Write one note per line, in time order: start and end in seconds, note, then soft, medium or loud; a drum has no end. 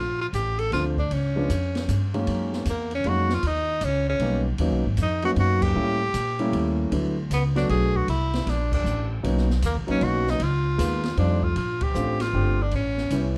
0.00 0.32 A#1 medium
0.00 0.21 F4 medium
0.21 0.27 F4 medium
0.33 0.71 A1 medium
0.33 0.61 G4 medium
0.33 kick soft
0.33 hi-hat pedal medium
0.33 ride medium
0.59 0.72 A4 medium
0.59 ride soft
0.72 1.09 D2 medium
0.72 0.95 F3 medium
0.72 0.95 A3 medium
0.72 0.95 C4 medium
0.72 0.95 D4 medium
0.72 0.84 F4 medium
0.72 kick soft
0.72 snare soft
0.72 ride medium
0.97 1.14 D4 medium
0.97 kick medium
1.10 1.48 C#2 medium
1.10 2.14 C#4 medium
1.10 kick soft
1.10 ride medium
1.36 1.48 F3 medium
1.36 1.48 G#3 medium
1.36 1.48 B3 medium
1.36 1.49 D4 medium
1.49 1.87 F2 medium
1.49 kick soft
1.49 hi-hat pedal medium
1.49 ride medium
1.75 snare soft
1.75 ride soft
1.88 2.26 G2 medium
1.88 kick soft
1.88 hi-hat pedal medium
1.88 ride medium
2.14 2.63 F#2 medium
2.14 2.63 D#3 medium
2.14 2.64 G#3 medium
2.14 2.63 A#3 medium
2.14 2.64 C#4 medium
2.14 ride soft
2.27 2.64 F#2 medium
2.27 kick soft
2.27 ride medium
2.53 snare soft
2.65 3.03 E2 medium
2.65 kick soft
2.65 hi-hat pedal medium
2.65 ride medium
2.70 2.91 A#3 medium
2.91 ride soft
2.95 3.10 C#4 medium
3.04 3.42 F2 medium
3.04 3.28 F#3 medium
3.04 3.28 G#3 medium
3.04 3.28 A#3 medium
3.04 3.28 C#4 medium
3.04 3.28 D#4 medium
3.04 kick soft
3.04 ride medium
3.09 3.36 F#4 medium
3.29 snare soft
3.35 3.48 F4 medium
3.43 3.80 D#2 medium
3.43 kick soft
3.43 ride medium
3.47 3.86 D#4 medium
3.81 4.19 C#2 medium
3.81 4.08 C#4 medium
3.81 kick soft
3.81 hi-hat pedal medium
3.81 ride medium
4.09 4.44 C#4 medium
4.19 4.57 B1 medium
4.19 4.43 G3 medium
4.19 4.44 A#3 medium
4.19 4.44 B3 medium
4.19 4.44 C#4 medium
4.19 4.44 D#4 medium
4.19 kick soft
4.19 ride medium
4.58 4.72 D#2 medium
4.58 4.82 F#3 medium
4.58 4.82 A#3 medium
4.58 4.83 B3 medium
4.58 4.83 C#4 medium
4.58 4.83 D#4 medium
4.58 kick soft
4.58 ride medium
4.72 4.84 B1 medium
4.84 4.97 G#1 medium
4.97 5.35 F2 medium
4.97 kick soft
4.97 hi-hat pedal medium
4.97 ride medium
5.02 5.24 D#4 medium
5.22 5.73 F#3 medium
5.22 5.73 A#3 medium
5.22 5.73 B3 medium
5.22 5.73 C#4 medium
5.22 5.73 D#4 medium
5.22 5.31 F#4 medium
5.22 ride soft
5.36 5.74 F#2 medium
5.36 5.64 F#4 loud
5.36 kick soft
5.36 ride medium
5.62 6.78 G4 loud
5.62 kick medium
5.62 crash medium
5.75 6.13 A2 medium
5.75 5.98 G3 medium
5.75 5.98 A3 medium
5.75 5.98 A#3 medium
5.75 5.98 C#4 medium
5.75 5.98 E4 medium
6.14 6.51 A#2 medium
6.14 kick soft
6.14 hi-hat pedal medium
6.14 ride medium
6.39 6.89 G3 medium
6.39 6.89 A3 medium
6.39 6.89 A#3 medium
6.39 6.89 C#4 medium
6.39 6.89 E4 medium
6.39 ride soft
6.53 6.90 D#2 medium
6.53 kick soft
6.53 ride medium
6.91 7.29 D2 medium
6.91 7.14 F#3 medium
6.91 7.14 A3 medium
6.91 7.14 B3 medium
6.91 7.14 D4 medium
6.91 7.15 E4 medium
6.91 kick soft
6.91 ride medium
7.30 7.68 C#2 medium
7.30 7.44 B3 medium
7.30 kick soft
7.30 hi-hat pedal medium
7.30 ride medium
7.55 8.05 F#3 medium
7.55 8.05 A3 medium
7.55 8.05 B3 medium
7.55 8.05 D4 medium
7.55 7.69 D4 loud
7.55 8.05 F#4 medium
7.55 snare soft
7.55 ride soft
7.69 8.07 B1 medium
7.69 7.98 G#4 loud
7.69 kick soft
7.69 ride medium
7.95 8.09 F#4 medium
7.95 kick soft
8.08 8.45 C2 medium
8.08 8.51 E4 medium
8.08 kick soft
8.08 ride medium
8.34 snare medium
8.34 ride soft
8.46 8.83 A#1 medium
8.46 8.73 D4 medium
8.46 kick soft
8.46 snare soft
8.46 ride medium
8.72 9.09 D4 medium
8.72 kick medium
8.72 crash medium
8.84 9.22 A1 medium
8.84 hi-hat pedal medium
9.23 9.62 B1 medium
9.23 9.46 F#3 medium
9.23 9.46 A#3 medium
9.23 9.46 B3 medium
9.23 9.46 C#4 medium
9.23 9.46 D#4 medium
9.23 kick soft
9.23 ride medium
9.38 snare soft
9.50 snare soft
9.62 9.77 D#2 medium
9.62 9.76 A#3 medium
9.62 kick soft
9.62 hi-hat pedal medium
9.62 ride medium
9.76 9.88 B1 medium
9.87 10.01 A#1 medium
9.87 10.37 F#3 medium
9.87 10.37 A#3 medium
9.87 10.37 B3 medium
9.87 10.37 C#4 medium
9.87 10.05 C#4 medium
9.87 10.37 D#4 medium
9.87 ride soft
10.01 10.39 B1 medium
10.01 10.31 F#4 loud
10.01 kick soft
10.01 ride medium
10.27 10.44 D#4 medium
10.27 snare soft
10.40 10.78 C#2 medium
10.40 11.18 F4 medium
10.40 kick soft
10.40 ride medium
10.78 11.16 D#2 medium
10.78 11.01 G#3 medium
10.78 11.01 A#3 medium
10.78 11.01 B3 medium
10.78 11.01 D#4 medium
10.78 11.01 F4 medium
10.78 kick soft
10.78 hi-hat pedal medium
10.78 ride medium
11.03 snare soft
11.03 ride soft
11.17 11.55 F2 medium
11.17 11.40 G3 medium
11.17 11.40 A3 medium
11.17 11.40 C4 medium
11.17 11.45 D4 medium
11.17 11.40 D#4 medium
11.17 11.40 F4 medium
11.17 kick soft
11.17 ride medium
11.43 11.57 F4 medium
11.43 kick medium
11.56 11.94 A#1 medium
11.56 11.84 F4 medium
11.56 ride medium
11.81 12.23 G4 loud
11.81 kick medium
11.81 ride medium
11.94 12.32 A1 medium
11.94 12.18 A3 medium
11.94 12.18 C4 medium
11.94 12.18 D4 medium
11.94 12.18 F4 medium
11.94 hi-hat pedal medium
12.20 12.64 F4 medium
12.20 snare soft
12.20 ride medium
12.33 12.71 G1 medium
12.33 12.56 A3 medium
12.33 12.57 C4 medium
12.33 12.57 D4 medium
12.33 12.57 G4 medium
12.33 kick soft
12.62 12.74 D4 medium
12.71 13.10 A1 medium
12.71 kick soft
12.71 ride medium
12.75 13.34 C#4 medium
12.97 snare soft
13.10 13.38 C2 medium
13.10 13.34 G3 medium
13.10 13.34 B3 medium
13.10 13.34 C#4 medium
13.10 13.35 E4 medium
13.10 kick soft
13.10 hi-hat pedal medium
13.10 ride medium